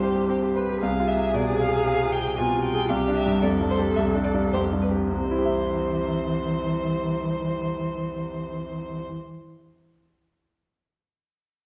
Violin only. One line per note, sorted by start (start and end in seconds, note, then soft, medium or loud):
0.00 0.55 C5 soft
0.82 1.09 F5 medium
1.08 1.36 E5 medium
1.35 1.60 D5 medium
1.61 1.86 F5 medium
1.86 2.14 F5 medium
2.12 2.38 G5 medium
2.38 2.63 G#5 medium
2.64 2.91 G5 medium
2.89 3.15 F5 medium
3.15 3.42 E5 medium
3.43 3.51 D5 medium
3.70 3.78 C5 medium
3.96 4.04 E5 medium
4.24 4.32 D5 medium
4.53 4.61 C5 medium
4.82 4.90 B4 soft
5.11 9.02 C5 soft